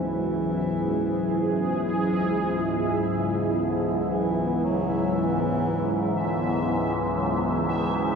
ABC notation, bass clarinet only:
X:1
M:4/4
L:1/8
Q:1/4=59
K:E
V:1 name="Bass clarinet" clef=bass
E,4- E, z C, =D, | E, F, E,2 =D, E, F, E, |]